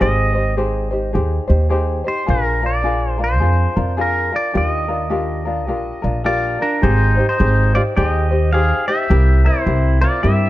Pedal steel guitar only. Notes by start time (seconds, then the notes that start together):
0.02 D#5
2.08 C5
2.30 A#4
2.66 D5
3.10 C5
3.24 C5
4.01 A#4
4.36 D5
4.57 D#5
6.26 F4 D5
6.62 D4 A#4
6.83 D#4 C5
7.29 D#4 C5
7.75 F4 D5
7.97 G4 D5
8.08 D#5
8.53 G#4 F5
8.88 G4 E5
9.46 E4 C5
10.01 F4 D5
10.23 G4 E5